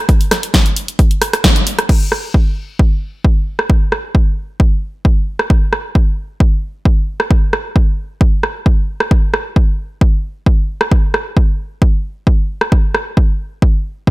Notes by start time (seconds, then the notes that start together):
0.09 kick, closed hi-hat
0.21 open hi-hat
0.31 cross-stick, snare, open hi-hat
0.43 closed hi-hat
0.54 kick, snare, closed hi-hat
0.66 closed hi-hat
0.76 open hi-hat
0.88 closed hi-hat
0.99 kick, closed hi-hat
1.11 closed hi-hat
1.22 cross-stick, open hi-hat
1.33 cross-stick, closed hi-hat
1.44 kick, snare, closed hi-hat
1.56 closed hi-hat
1.67 open hi-hat
1.79 cross-stick, closed hi-hat
1.89 kick, crash
2.12 cross-stick
2.34 kick
2.79 kick
3.25 kick
3.59 cross-stick
3.70 kick
3.92 cross-stick
4.15 kick
4.60 kick
5.05 kick
5.39 cross-stick
5.50 kick
5.73 cross-stick
5.95 kick
6.40 kick
6.85 kick
7.20 cross-stick
7.31 kick
7.53 cross-stick
7.76 kick
8.21 kick
8.43 cross-stick
8.66 kick
9.00 cross-stick
9.11 kick
9.34 cross-stick
9.56 kick
10.01 kick
10.46 kick
10.81 cross-stick
10.91 kick
11.14 cross-stick
11.37 kick
11.82 kick
12.27 kick
12.61 cross-stick
12.72 kick
12.95 cross-stick
13.17 kick
13.62 kick
14.07 kick